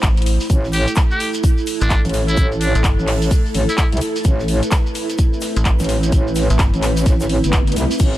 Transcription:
Already playing: analog synth pad A3 E4 C5, ambient pad E4 B5
0.03 fm bass A1, kick, snare, clap, closed hi-hat, shaker, shekere
0.17 closed hi-hat, shekere
0.22 closed hi-hat
0.26 open hi-hat, shaker
0.40 open hi-hat, shekere
0.50 wobble bass A1, analog synth pad A4, kick, closed hi-hat, shekere, shaker
0.64 ambient pad A4, snare, shekere
0.73 muted trumpet G4, open hi-hat, shaker
0.87 closed hi-hat, shekere
0.96 kick, snare, clap, closed hi-hat, shaker, shekere
1.11 muted trumpet G4, shekere
1.20 open hi-hat, shaker
1.34 closed hi-hat, shekere
1.43 kick, closed hi-hat, shekere, shaker
1.58 shekere
1.67 open hi-hat, shaker
1.81 fm bass A1, muted trumpet D4, closed hi-hat, shekere
1.90 kick, snare, clap, closed hi-hat, shekere, shaker
2.05 wobble bass A1, closed hi-hat, shekere
2.09 closed hi-hat
2.14 open hi-hat, shaker
2.28 muted trumpet E4, closed hi-hat, shekere
2.37 wobble bass A1, kick, closed hi-hat, shaker, shekere
2.52 shekere
2.61 muted trumpet D4, open hi-hat, shaker
2.75 fm bass A1, closed hi-hat, shekere
2.84 fm bass G1, kick, snare, clap, closed hi-hat, shekere, shaker
2.99 wobble bass A1, shekere
3.07 clap, open hi-hat
3.22 closed hi-hat, shekere
3.31 kick, closed hi-hat, shekere, shaker
3.46 shekere
3.54 wobble bass A1, open hi-hat, shaker
3.69 muted trumpet E4, closed hi-hat, shekere
3.77 muted trumpet E4, kick, snare, clap, closed hi-hat, shekere, shaker
3.92 wobble bass C2, closed hi-hat, shekere
3.97 closed hi-hat
4.01 open hi-hat, shaker
4.16 open hi-hat, shekere
4.24 wobble bass A1, analog synth pad B4, kick, closed hi-hat, shaker, shekere
4.39 ambient pad C4, snare, shekere
4.48 open hi-hat, shaker
4.63 closed hi-hat, shekere
4.71 kick, snare, clap, closed hi-hat, shaker, shekere
4.86 shekere
4.95 open hi-hat, shaker
5.10 closed hi-hat, shekere
5.18 kick, closed hi-hat, shekere, shaker
5.33 shekere
5.41 snare, open hi-hat, shaker
5.56 fm bass A1, closed hi-hat, shekere
5.65 kick, clap, closed hi-hat, shaker, shekere
5.79 wobble bass A1, snare, closed hi-hat, shaker, shekere
5.84 closed hi-hat
5.89 open hi-hat, shaker
6.03 snare, closed hi-hat, shekere
6.12 wobble bass A1, kick, closed hi-hat, shekere, shaker
6.27 shekere
6.35 snare, open hi-hat, shaker
6.50 fm bass A1, closed hi-hat, shekere
6.59 fm bass G1, kick, snare, clap, closed hi-hat, shekere, shaker
6.74 wobble bass A1, closed hi-hat, shekere
6.82 snare, clap, open hi-hat, shaker
6.97 snare, closed hi-hat, shekere, shaker
7.06 wobble bass A1, kick, snare, closed hi-hat, shaker, shekere
7.20 snare, shaker, shekere
7.29 open hi-hat
7.44 wobble bass G1, closed hi-hat, shekere
7.52 kick, snare, clap, closed hi-hat, shaker, shekere
7.67 closed hi-hat, shekere
7.72 closed hi-hat
7.76 wobble bass C2, snare, open hi-hat, shaker
7.91 closed hi-hat, open hi-hat, shekere
7.99 wobble bass A1, analog synth pad A4, kick, closed hi-hat, crash, shaker, shekere
8.14 snare, shekere

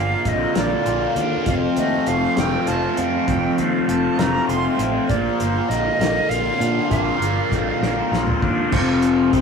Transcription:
Already playing: fingered electric bass G1, distorted electric guitar A#2 A#3 D4 F4, transistor combo organ F4 A#4 F5, flute F5
0.25 fingered electric bass A#1, distorted electric guitar D3, flute D#5, kick, closed hi-hat
0.55 fingered electric bass A#1, distorted electric guitar A#3, flute D5, snare, closed hi-hat
0.85 fingered electric bass A#1, distorted electric guitar F4, closed hi-hat
1.16 fingered electric bass D#2, distorted electric guitar D4, closed hi-hat
1.46 fingered electric bass F1, distorted electric guitar F2, transistor combo organ A3 F4 C5, flute F5, kick, closed hi-hat
1.77 fingered electric bass D#2, distorted electric guitar A3, flute D#5, closed hi-hat
2.06 fingered electric bass F1, distorted electric guitar F3, flute F5, closed hi-hat
2.37 fingered electric bass F1, distorted electric guitar A3, flute G5, snare, closed hi-hat
2.67 fingered electric bass F1, distorted electric guitar F4, flute A5, closed hi-hat
2.97 fingered electric bass F2, distorted electric guitar C4, closed hi-hat
3.27 fingered electric bass F1, distorted electric guitar F2, flute G5, kick, closed hi-hat
3.58 fingered electric bass D#2, distorted electric guitar A3, flute F5, closed hi-hat
3.87 fingered electric bass F1, distorted electric guitar F3, flute A5, closed hi-hat
4.17 fingered electric bass F1, distorted electric guitar A3, flute A#5, snare, closed hi-hat
4.47 fingered electric bass F1, distorted electric guitar F4, flute C6, closed hi-hat
4.77 fingered electric bass A1, distorted electric guitar C4, closed hi-hat
5.08 fingered electric bass A#1, distorted electric guitar A#2, transistor combo organ A#4, flute D5, kick, closed hi-hat
5.38 fingered electric bass G1, distorted electric guitar A#3, flute C5, closed hi-hat
5.69 fingered electric bass A#1, distorted electric guitar D3, flute D#5, closed hi-hat
5.99 fingered electric bass A#1, distorted electric guitar A#3, snare, closed hi-hat
6.29 fingered electric bass A#1, distorted electric guitar F4, flute F5, closed hi-hat
6.59 fingered electric bass A#2, distorted electric guitar D4, closed hi-hat
6.89 fingered electric bass A#1, distorted electric guitar A#2, flute F5, kick, closed hi-hat
7.19 fingered electric bass G1, distorted electric guitar A#3, closed hi-hat
7.51 fingered electric bass A#1, distorted electric guitar D3, kick, closed hi-hat
7.81 fingered electric bass A#1, distorted electric guitar A#3, snare
8.12 fingered electric bass A#1, distorted electric guitar F4, snare
8.27 mid tom
8.42 fingered electric bass D#2, distorted electric guitar D4, kick
8.72 fingered electric bass F1, distorted electric guitar F2 C3 F3, transistor combo organ F4 A4 C5 F5, kick, crash
9.02 closed hi-hat
9.32 fingered electric bass C2, distorted electric guitar C3 G3 C4, transistor combo organ C4 G4 C5 G5, kick, closed hi-hat

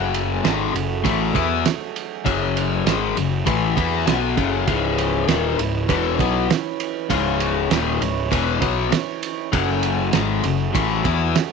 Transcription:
Already playing: picked electric bass F#1, overdriven electric guitar F#2 C#3 F#3, harmonium F#3 A3 G#4
0.14 ride
0.43 picked electric bass G#1, overdriven electric guitar G#2 D#3 G#3, snare, ride
0.74 picked electric bass F#1, overdriven electric guitar F#2 C#3, ride
1.04 picked electric bass A1, overdriven electric guitar A2 E3 A3, kick, ride
1.34 picked electric bass E2, overdriven electric guitar E3 B3 E4, kick, ride
1.64 muted overdriven electric guitar stroke, muted picked electric bass stroke, snare, ride
1.96 ride
2.25 picked electric bass F#1, overdriven electric guitar F#2 C#3 F#3, kick, ride
2.57 ride
2.86 picked electric bass G#1, overdriven electric guitar G#2 D#3 G#3, snare, ride
3.16 picked electric bass F#1, overdriven electric guitar F#2 C#3, ride
3.45 picked electric bass A1, overdriven electric guitar A2 E3 A3, kick, ride
3.76 picked electric bass E2, overdriven electric guitar E3 B3 E4, kick, ride
4.06 picked electric bass B1, overdriven electric guitar B2 F#3 B3, snare, ride
4.36 picked electric bass F#1, overdriven electric guitar F#2 C#3 F#3, kick, ride
4.67 picked electric bass C#1, overdriven electric guitar C#2 G#2 C#3, harmonium E3 C#4 B4, kick, ride
4.98 ride
5.27 picked electric bass D#1, overdriven electric guitar D#2 A#2 D#3, snare, ride
5.58 picked electric bass C#1, overdriven electric guitar C#2 G#2, ride
5.88 picked electric bass E1, overdriven electric guitar E2 B2 E3, kick, ride
6.19 picked electric bass B1, overdriven electric guitar B2 F#3 B3, kick, ride
6.49 muted overdriven electric guitar stroke, muted picked electric bass stroke, snare, ride
6.80 ride
7.09 picked electric bass C#1, overdriven electric guitar C#2 G#2 C#3, harmonium C#5, kick, ride
7.40 ride
7.70 picked electric bass D#1, overdriven electric guitar D#2 A#2 D#3, snare, ride
8.01 picked electric bass C#1, overdriven electric guitar C#2 G#2, ride
8.31 picked electric bass E1, overdriven electric guitar E2 B2 E3, kick, ride
8.60 picked electric bass B1, overdriven electric guitar B2 F#3 B3, kick, ride
8.91 muted overdriven electric guitar stroke, muted picked electric bass stroke, snare, ride
9.23 ride
9.51 picked electric bass F#1, overdriven electric guitar F#2 C#3 F#3, harmonium F#3 A3 G#4, kick, ride
9.83 ride
10.13 picked electric bass G#1, overdriven electric guitar G#2 D#3 G#3, snare, ride
10.44 picked electric bass F#1, overdriven electric guitar F#2 C#3, ride
10.74 picked electric bass A1, overdriven electric guitar A2 E3 A3, kick, ride
11.04 picked electric bass E2, overdriven electric guitar E3 B3 E4, kick, ride
11.35 muted picked electric bass stroke, muted overdriven electric guitar stroke, snare, ride

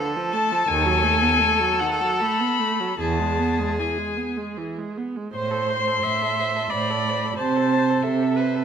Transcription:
0.00 viola D3, violin A4
0.16 viola F3
0.32 viola A3, violin A5
0.52 viola F3
0.67 cello D#2, viola D#3, violin G#5
0.86 viola F#3
1.04 viola A3
1.22 viola B3
1.39 viola A3
1.60 viola F#3
1.79 viola D#3, violin F#5
2.01 viola F#3
2.20 viola A3, violin B5
2.41 viola B3
2.59 viola A3
2.80 viola F#3
2.99 cello E2, viola E3, violin G#4 A5
3.20 viola G#3
3.39 viola B3
3.59 viola G#3
3.79 viola E3, violin G#5
3.98 viola G#3
4.17 viola B3
4.38 viola G#3
4.58 viola E3
4.78 viola G#3
4.97 viola B3
5.16 viola G#3
5.33 cello A2, viola C5, violin C5 C6
5.51 violin A4
5.70 violin C5
5.87 violin A4
6.03 cello A2, violin C5, viola E5
6.22 violin A4
6.40 violin C5
6.56 violin A4
6.70 cello A2, violin C5 B5, viola D5
6.90 violin A4
7.09 violin C5
7.25 violin A4
7.38 cello C3, viola C5, violin C5 A5
7.56 violin A4
7.73 violin C5
7.90 violin A4
8.03 cello C3, viola A4, violin E5
8.07 violin C5
8.23 violin A4
8.36 viola B4, violin C5
8.55 violin A4

